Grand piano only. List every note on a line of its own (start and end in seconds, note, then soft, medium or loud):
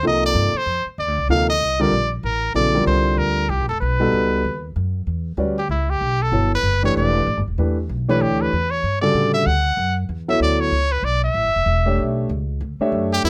0.03 0.50 C3 medium
0.03 0.50 F3 medium
0.03 0.50 A#3 medium
0.03 0.51 D#4 medium
0.03 0.51 A4 medium
1.30 1.47 C3 medium
1.30 1.47 F3 medium
1.30 1.47 A#3 medium
1.30 1.47 D#4 medium
1.30 1.47 A4 medium
1.80 1.91 D3 medium
1.80 1.91 G3 medium
1.80 1.91 C4 medium
1.80 1.91 F4 medium
1.80 1.91 A#4 medium
2.55 2.72 C#3 medium
2.55 2.72 F#3 medium
2.55 2.72 B3 medium
2.55 2.72 E4 medium
2.55 2.72 A4 medium
2.74 3.42 D3 medium
2.74 3.42 G3 medium
2.74 3.42 C4 medium
2.74 3.42 F4 medium
2.74 3.42 A#4 medium
4.00 4.41 G3 medium
4.00 4.41 B3 medium
4.00 4.41 D#4 medium
4.00 4.42 F#4 medium
4.00 4.42 A4 medium
5.38 5.55 G3 medium
5.38 5.55 C#4 medium
5.38 5.55 F#4 medium
5.38 5.55 B4 medium
5.38 5.56 D5 medium
6.32 6.49 F#3 soft
6.32 6.49 B3 soft
6.32 6.49 E4 soft
6.32 6.49 A4 soft
6.32 6.50 C#5 medium
6.83 7.24 E3 medium
6.83 7.24 A3 medium
6.83 7.24 D4 medium
6.83 7.25 G4 medium
6.83 7.25 B4 medium
7.58 7.75 E3 medium
7.58 7.75 A3 medium
7.58 7.76 D4 soft
7.58 7.76 G4 soft
7.58 7.76 B4 medium
8.08 8.50 E3 medium
8.08 8.50 A3 medium
8.08 8.50 D4 medium
8.08 8.50 G4 medium
8.08 8.50 C#5 medium
9.02 9.44 C#3 medium
9.02 9.43 D3 medium
9.02 9.44 G3 medium
9.02 9.44 F#4 medium
9.02 9.44 A4 medium
10.28 10.70 F#3 medium
10.28 10.70 B3 medium
10.28 10.70 E4 medium
10.28 10.70 A4 medium
10.28 10.70 C#5 medium
11.86 12.27 A3 medium
11.86 12.27 D4 medium
11.86 12.27 G4 medium
11.86 12.27 C#5 medium
11.86 12.27 E5 medium
12.81 13.22 A3 medium
12.81 13.22 D4 medium
12.81 13.22 G4 medium
12.81 13.22 C#5 medium
12.81 13.22 E5 medium
13.24 13.30 F#3 medium
13.24 13.30 B3 medium
13.24 13.30 E4 medium
13.24 13.30 A4 medium
13.24 13.30 E5 medium